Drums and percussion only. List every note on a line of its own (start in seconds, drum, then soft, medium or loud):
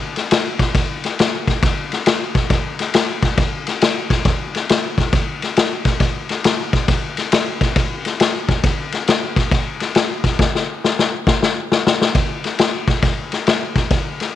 0.16 snare soft
0.16 ride medium
0.31 snare loud
0.31 ride loud
0.59 kick medium
0.59 snare soft
0.59 ride medium
0.75 kick loud
0.75 snare soft
0.75 ride medium
1.04 snare soft
1.04 ride medium
1.19 snare loud
1.19 ride medium
1.47 kick medium
1.47 snare soft
1.47 ride medium
1.63 kick loud
1.63 snare soft
1.63 ride medium
1.92 snare soft
1.92 ride medium
2.06 snare loud
2.06 ride medium
2.35 kick loud
2.35 snare soft
2.35 ride medium
2.50 kick loud
2.50 snare soft
2.50 ride medium
2.79 snare soft
2.79 ride medium
2.94 snare loud
2.94 ride medium
3.22 kick medium
3.22 snare soft
3.22 ride medium
3.38 kick loud
3.38 snare soft
3.38 ride medium
3.67 snare soft
3.67 ride medium
3.81 snare loud
3.81 ride loud
4.10 kick medium
4.10 snare soft
4.10 ride medium
4.25 kick loud
4.25 snare soft
4.25 ride medium
4.55 snare soft
4.55 ride medium
4.69 snare loud
4.69 ride medium
4.98 kick medium
4.98 snare soft
4.98 ride medium
5.13 kick loud
5.13 snare soft
5.13 ride medium
5.42 snare soft
5.42 ride medium
5.57 snare loud
5.57 ride medium
5.85 kick medium
5.85 snare soft
5.85 ride medium
6.00 kick loud
6.00 snare soft
6.00 ride medium
6.29 snare soft
6.29 ride medium
6.44 snare loud
6.44 ride medium
6.73 kick medium
6.73 snare soft
6.73 ride medium
6.88 kick loud
6.88 snare soft
6.88 ride medium
7.17 snare soft
7.17 ride medium
7.32 snare loud
7.32 ride loud
7.61 kick medium
7.61 snare soft
7.61 ride medium
7.76 kick loud
7.76 snare soft
7.76 ride medium
8.05 snare soft
8.05 ride medium
8.20 snare loud
8.20 ride medium
8.49 kick medium
8.49 snare soft
8.49 ride medium
8.64 kick loud
8.64 snare soft
8.64 ride medium
8.92 snare soft
8.92 ride medium
9.08 snare loud
9.08 ride medium
9.36 kick medium
9.36 snare soft
9.36 ride medium
9.51 kick loud
9.51 snare soft
9.51 ride medium
9.80 snare soft
9.80 ride medium
9.95 snare loud
9.95 ride medium
10.24 kick medium
10.24 snare soft
10.24 ride medium
10.39 kick loud
10.39 snare medium
10.55 snare medium
10.84 snare medium
10.99 snare medium
11.27 kick loud
11.27 snare medium
11.43 snare medium
11.72 snare medium
11.87 snare loud
12.01 snare medium
12.15 kick loud
12.15 snare soft
12.15 ride medium
12.44 snare soft
12.44 ride medium
12.59 snare loud
12.59 ride medium
12.88 kick medium
12.88 snare soft
12.88 ride medium
13.02 kick loud
13.02 snare soft
13.02 ride medium
13.32 snare soft
13.32 ride medium
13.47 snare medium
13.47 ride medium
13.75 kick medium
13.75 snare soft
13.75 ride medium
13.91 kick loud
13.91 snare soft
13.91 ride medium
14.20 snare soft
14.20 ride medium